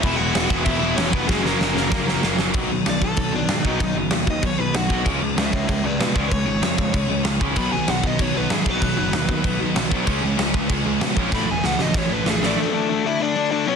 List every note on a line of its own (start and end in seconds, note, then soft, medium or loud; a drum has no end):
0.01 0.30 E1 loud
0.01 0.18 E2 loud
0.01 0.17 B2 loud
0.01 0.19 E3 loud
0.01 0.19 G#3 loud
0.01 0.18 B3 loud
0.01 0.16 E4 medium
0.01 0.17 E4 loud
0.01 0.04 E5 loud
0.01 kick loud
0.01 crash medium
0.16 0.33 E2 medium
0.16 0.33 B2 medium
0.16 0.33 G#3 medium
0.16 0.33 B3 medium
0.16 0.34 E4 medium
0.16 0.63 F#4 medium
0.16 0.64 F#5 loud
0.21 0.32 E3 medium
0.33 0.48 E1 medium
0.33 0.48 E2 loud
0.33 0.47 B2 loud
0.33 0.51 E3 loud
0.33 0.50 G#3 loud
0.33 0.50 B3 loud
0.33 0.49 E4 loud
0.33 snare loud
0.33 crash medium
0.49 0.63 E1 medium
0.49 0.63 E2 medium
0.49 0.65 B2 medium
0.49 0.65 E3 medium
0.49 0.65 G#3 loud
0.49 0.66 B3 loud
0.49 0.67 E4 loud
0.49 kick medium
0.65 0.92 E1 loud
0.65 0.79 E2 loud
0.65 0.79 B2 loud
0.65 0.83 E3 loud
0.65 0.82 G#3 loud
0.65 0.82 B3 loud
0.65 0.96 E4 medium
0.65 0.81 E4 loud
0.65 0.96 E5 loud
0.65 kick loud
0.65 crash medium
0.79 0.93 E2 medium
0.79 0.93 B2 loud
0.79 0.94 E3 loud
0.79 0.97 B3 medium
0.79 0.98 E4 loud
0.84 0.96 E3 medium
0.84 0.97 G#3 medium
0.94 1.11 E1 loud
0.94 1.11 E2 loud
0.94 1.11 B2 loud
0.94 1.14 E3 medium
0.94 1.13 G#3 loud
0.94 1.13 C#4 medium
0.94 1.12 C#5 medium
0.94 snare loud
0.94 crash medium
0.99 1.13 B3 loud
0.99 1.12 E4 loud
1.12 1.27 F1 medium
1.12 1.26 E2 medium
1.12 1.26 B2 medium
1.12 1.27 E3 medium
1.12 1.28 G#3 medium
1.12 1.28 B3 medium
1.12 1.29 B3 medium
1.12 1.28 E4 loud
1.12 1.27 B4 medium
1.12 kick medium
1.27 1.55 F#1 loud
1.27 1.45 F#2 loud
1.27 1.44 C#3 loud
1.27 1.44 F#3 medium
1.27 1.44 G#3 medium
1.27 1.43 A#3 loud
1.27 1.42 C#4 loud
1.27 1.45 G#4 medium
1.27 kick loud
1.27 snare medium
1.43 1.58 F#2 medium
1.43 1.58 C#3 medium
1.43 1.59 F#3 medium
1.43 1.59 A#3 medium
1.43 2.36 A#3 medium
1.43 1.60 C#4 loud
1.43 2.35 A#4 medium
1.43 snare medium
1.59 1.73 F#1 medium
1.59 1.76 F#2 loud
1.59 1.75 C#3 medium
1.59 1.75 F#3 loud
1.59 1.74 A#3 loud
1.59 1.73 C#4 loud
1.59 snare medium
1.75 1.89 F#1 medium
1.75 1.89 F#2 medium
1.75 1.90 C#3 medium
1.75 1.90 F#3 loud
1.75 1.91 A#3 medium
1.75 1.92 C#4 loud
1.75 snare medium
1.90 2.18 F#1 loud
1.90 2.07 F#2 loud
1.90 2.06 C#3 loud
1.90 2.06 F#3 medium
1.90 2.05 A#3 loud
1.90 2.05 C#4 loud
1.90 kick loud
1.90 snare loud
2.06 2.21 F#2 medium
2.06 2.21 C#3 medium
2.06 2.22 F#3 medium
2.06 2.22 A#3 loud
2.06 2.23 C#4 loud
2.06 snare medium
2.22 2.36 F#1 loud
2.22 2.39 F#2 loud
2.22 2.38 C#3 loud
2.22 2.38 F#3 medium
2.22 2.38 A#3 loud
2.22 2.37 C#4 loud
2.22 snare loud
2.38 2.52 F#1 medium
2.38 2.54 F#2 medium
2.38 2.54 C#3 medium
2.38 2.54 F#3 medium
2.38 2.54 A#3 loud
2.38 2.53 C#4 medium
2.38 snare loud
2.54 2.68 B1 medium
2.54 2.69 B2 medium
2.54 2.70 D#3 medium
2.54 2.70 F#3 medium
2.54 2.70 B3 loud
2.54 kick loud
2.54 crash medium
2.71 2.84 B1 medium
2.71 2.85 B2 medium
2.71 2.85 D#3 medium
2.71 2.85 F#3 medium
2.86 3.00 B1 medium
2.86 3.00 B2 medium
2.86 3.01 D#3 medium
2.86 3.01 F#3 medium
2.86 3.03 D5 medium
2.86 snare loud
2.86 crash medium
3.02 3.15 B1 medium
3.02 3.16 B2 medium
3.02 3.16 D#3 medium
3.02 3.16 F#3 medium
3.02 3.33 A4 medium
3.02 kick medium
3.17 3.31 B1 loud
3.17 3.31 B2 medium
3.17 3.31 D#3 medium
3.17 3.32 F#3 medium
3.17 kick loud
3.17 crash medium
3.32 3.47 B1 medium
3.32 3.47 B2 medium
3.32 3.47 D#3 medium
3.32 3.48 F#3 medium
3.32 3.65 D4 medium
3.48 3.62 G#2 medium
3.48 3.63 B2 medium
3.48 3.63 D#3 medium
3.48 3.64 F#3 medium
3.48 snare loud
3.48 crash medium
3.65 3.78 B1 medium
3.65 3.79 B2 medium
3.65 3.80 D#3 loud
3.65 3.80 F#3 loud
3.65 3.80 B3 loud
3.65 3.96 D#4 medium
3.65 kick medium
3.80 3.94 B1 medium
3.80 3.95 B2 medium
3.80 3.95 D#3 medium
3.80 3.95 F#3 medium
3.80 kick loud
3.80 crash medium
3.94 4.08 F#1 medium
3.94 4.11 B2 medium
3.94 4.11 D#3 medium
3.94 4.10 F#3 medium
4.10 4.24 D#2 medium
4.10 4.26 B2 medium
4.10 4.26 D#3 medium
4.10 4.25 F#3 medium
4.10 snare loud
4.10 crash medium
4.26 4.40 D#2 medium
4.26 4.42 B2 medium
4.26 4.42 D#3 medium
4.26 4.41 F#3 medium
4.26 4.44 D#5 loud
4.26 kick medium
4.42 4.56 B1 loud
4.42 4.57 B2 medium
4.42 4.58 D#3 medium
4.42 4.57 F#3 medium
4.42 4.60 C#5 medium
4.42 kick medium
4.42 crash medium
4.58 4.73 B1 medium
4.58 4.73 B2 medium
4.58 4.73 D#3 medium
4.58 4.72 F#3 medium
4.58 4.75 B4 medium
4.73 4.88 B1 medium
4.73 4.88 B2 medium
4.73 4.89 D#3 medium
4.73 4.88 F#3 medium
4.73 5.05 F#4 medium
4.73 snare loud
4.73 crash medium
4.89 5.03 B1 loud
4.89 5.05 B2 medium
4.89 5.05 D#3 loud
4.89 5.05 F#3 loud
4.89 5.05 B3 loud
4.89 kick medium
5.05 5.19 C#2 medium
5.05 5.19 C#3 medium
5.05 5.19 G#3 loud
5.05 5.21 C#4 loud
5.05 kick loud
5.05 crash medium
5.20 5.35 C#2 medium
5.20 5.35 C#3 medium
5.20 5.35 G#3 medium
5.36 5.50 C#2 medium
5.36 5.50 C#3 medium
5.36 5.51 G#3 medium
5.36 5.50 C#5 medium
5.36 5.52 E5 loud
5.36 snare loud
5.36 crash medium
5.52 5.67 C#2 medium
5.52 5.66 C#3 medium
5.52 5.67 G#3 medium
5.52 5.67 C#5 medium
5.52 5.68 E5 medium
5.52 kick medium
5.68 5.82 C#2 loud
5.68 5.83 C#3 medium
5.68 5.83 G#3 medium
5.68 5.84 C#5 medium
5.68 5.85 E5 medium
5.68 kick loud
5.68 crash medium
5.83 5.97 C#2 medium
5.83 5.98 C#3 medium
5.83 5.98 G#3 medium
5.83 5.99 B4 medium
5.83 6.00 D5 medium
5.99 6.13 B2 loud
5.99 6.14 C#3 medium
5.99 6.14 G#3 medium
5.99 6.15 B4 medium
5.99 6.15 D5 medium
5.99 snare loud
5.99 crash medium
6.15 6.29 C#2 medium
6.15 6.30 C#3 loud
6.15 6.30 G#3 medium
6.15 6.31 C#4 loud
6.15 6.30 B4 medium
6.15 6.31 D5 loud
6.15 kick medium
6.31 6.45 C#2 medium
6.31 6.45 C#3 medium
6.31 6.45 G#3 medium
6.31 7.23 C#5 medium
6.31 kick loud
6.31 crash medium
6.46 6.60 G#1 medium
6.46 6.61 C#3 medium
6.46 6.61 G#3 medium
6.62 6.75 F2 medium
6.62 6.76 C#3 medium
6.62 6.76 G#3 medium
6.62 snare loud
6.62 crash medium
6.77 6.92 F2 medium
6.77 6.91 C#3 medium
6.77 6.91 G#3 medium
6.77 kick medium
6.92 7.07 C#2 medium
6.92 7.07 C#3 medium
6.92 7.07 G#3 medium
6.92 kick loud
6.92 crash medium
7.08 7.22 C#2 medium
7.08 7.22 C#3 medium
7.08 7.23 G#3 medium
7.23 7.38 C#2 medium
7.23 7.39 C#3 medium
7.23 7.39 G#3 medium
7.23 snare loud
7.23 crash medium
7.40 7.54 C#2 medium
7.40 7.55 C#3 medium
7.40 7.55 G#3 loud
7.40 7.56 C#4 loud
7.40 kick medium
7.56 7.70 B1 medium
7.56 7.71 B2 medium
7.56 7.72 D#3 loud
7.56 7.72 F#3 medium
7.56 7.72 B3 loud
7.56 7.72 B5 medium
7.56 kick loud
7.56 crash medium
7.72 7.86 B1 medium
7.72 7.86 B2 medium
7.72 7.87 D#3 medium
7.72 7.87 F#3 medium
7.72 7.88 G#5 medium
7.87 8.02 B1 medium
7.87 8.02 B2 medium
7.87 8.02 D#3 medium
7.87 8.02 F#3 medium
7.87 8.04 F#5 medium
7.87 snare loud
7.87 crash medium
8.03 8.17 B1 medium
8.03 8.18 B2 medium
8.03 8.18 D#3 medium
8.03 8.18 F#3 medium
8.03 8.22 D#5 medium
8.03 kick medium
8.19 8.33 B1 medium
8.19 8.34 B2 medium
8.19 8.34 D#3 medium
8.19 8.33 F#3 medium
8.19 8.82 B3 medium
8.19 8.36 C#5 medium
8.19 kick loud
8.19 crash medium
8.34 8.48 B1 medium
8.34 8.49 B2 medium
8.34 8.49 D#3 medium
8.34 8.49 F#3 medium
8.34 8.51 B4 loud
8.50 8.64 G#2 medium
8.50 8.65 B2 medium
8.50 8.65 D#3 medium
8.50 8.65 F#3 loud
8.50 8.69 G#4 loud
8.50 snare loud
8.50 crash medium
8.66 8.79 B1 medium
8.66 8.81 B2 medium
8.66 8.81 D#3 medium
8.66 8.82 F#3 loud
8.66 8.81 B3 loud
8.66 9.59 B4 loud
8.66 kick medium
8.82 8.95 B1 medium
8.82 8.96 B2 medium
8.82 8.96 D#3 medium
8.82 8.96 F#3 medium
8.82 9.45 B3 medium
8.82 kick loud
8.82 crash medium
8.97 9.11 F#1 medium
8.97 9.11 B2 medium
8.97 9.12 D#3 medium
8.97 9.10 F#3 medium
9.12 9.27 D#2 medium
9.12 9.27 B2 medium
9.12 9.28 D#3 medium
9.12 9.27 F#3 medium
9.12 snare loud
9.12 crash medium
9.29 9.42 D#2 medium
9.29 9.43 B2 medium
9.29 9.43 D#3 medium
9.29 9.43 F#3 medium
9.29 kick medium
9.44 9.57 B1 loud
9.44 9.59 B2 medium
9.44 9.59 D#3 medium
9.44 9.58 F#3 medium
9.44 10.07 B3 medium
9.44 kick loud
9.44 crash medium
9.60 9.74 B1 medium
9.60 9.74 B2 medium
9.60 9.74 D#3 medium
9.60 9.73 F#3 medium
9.75 9.89 B1 loud
9.75 9.90 B2 medium
9.75 9.91 D#3 medium
9.75 9.89 F#3 medium
9.75 snare loud
9.75 crash medium
9.91 10.05 B1 medium
9.91 10.07 B2 medium
9.91 10.07 D#3 loud
9.91 10.07 F#3 loud
9.91 10.06 B3 loud
9.91 kick medium
10.07 10.20 C#2 loud
10.07 10.21 C#3 loud
10.07 10.22 G#3 medium
10.07 10.23 C#4 loud
10.07 kick loud
10.07 crash medium
10.23 10.36 C#2 medium
10.23 10.36 C#3 medium
10.23 10.37 G#3 medium
10.37 10.52 C#2 medium
10.37 10.52 C#3 medium
10.37 10.52 G#3 medium
10.37 snare loud
10.37 crash medium
10.54 10.67 C#2 medium
10.54 10.69 C#3 medium
10.54 10.69 G#3 medium
10.54 kick medium
10.70 10.83 C#2 loud
10.70 10.84 C#3 medium
10.70 10.84 G#3 medium
10.70 11.32 C#4 medium
10.70 kick loud
10.70 crash medium
10.85 10.98 C#2 medium
10.85 11.00 C#3 medium
10.85 11.00 G#3 medium
11.01 11.14 B2 loud
11.01 11.16 C#3 medium
11.01 11.16 G#3 medium
11.01 snare loud
11.01 crash medium
11.17 11.30 A#1 loud
11.17 11.32 C#3 medium
11.17 11.32 G#3 medium
11.17 11.32 C#4 loud
11.17 kick medium
11.32 11.46 A1 loud
11.32 11.47 A2 medium
11.32 11.47 E3 loud
11.32 11.48 A3 loud
11.32 11.51 B5 loud
11.32 kick loud
11.32 snare medium
11.47 11.61 E1 loud
11.47 11.62 A2 medium
11.47 11.62 E3 medium
11.47 11.65 G#5 loud
11.63 11.77 C#2 loud
11.63 11.76 A2 medium
11.63 11.77 E3 medium
11.63 11.80 F#5 loud
11.63 snare medium
11.78 11.92 C#2 medium
11.78 11.92 A2 medium
11.78 11.92 E3 loud
11.78 snare medium
11.82 11.98 D#5 medium
11.93 12.08 A1 loud
11.93 12.08 A2 medium
11.93 12.08 E3 medium
11.93 kick loud
11.93 snare medium
11.98 12.58 A3 medium
11.98 12.12 C#5 loud
12.10 12.24 A1 medium
12.10 12.24 A2 medium
12.10 12.24 E3 medium
12.10 12.27 B4 medium
12.25 12.39 A1 medium
12.25 12.40 A2 medium
12.25 12.41 E3 medium
12.25 snare loud
12.30 12.44 G#4 loud
12.42 12.55 A1 medium
12.42 12.56 A2 medium
12.42 12.57 E3 loud
12.42 12.57 A3 loud
12.42 snare medium
12.46 12.59 D5 loud
12.57 12.72 D3 loud
12.57 12.71 A3 loud
12.57 13.03 A3 medium
12.57 12.71 D4 loud
12.57 13.07 A4 medium
12.72 12.88 D3 medium
12.72 12.88 A3 medium
12.72 12.88 D4 loud
12.89 13.04 D3 loud
12.89 13.04 A3 loud
12.89 13.04 D4 loud
13.05 13.19 D3 medium
13.05 13.18 A3 medium
13.05 13.18 D4 loud
13.05 13.21 E4 medium
13.05 13.21 E5 loud
13.20 13.35 D3 loud
13.20 13.35 A3 loud
13.20 13.35 D4 loud
13.20 13.51 D4 medium
13.20 13.50 D5 loud
13.36 13.50 D3 medium
13.36 13.51 A3 medium
13.36 13.51 D4 loud
13.51 13.66 D3 loud
13.51 13.66 A3 loud
13.51 13.66 D4 loud
13.51 13.66 D4 medium
13.51 13.67 D5 loud
13.67 13.76 B2 loud
13.67 13.76 F#3 loud
13.67 13.76 B3 loud
13.67 13.76 C#4 medium
13.67 13.76 C#5 medium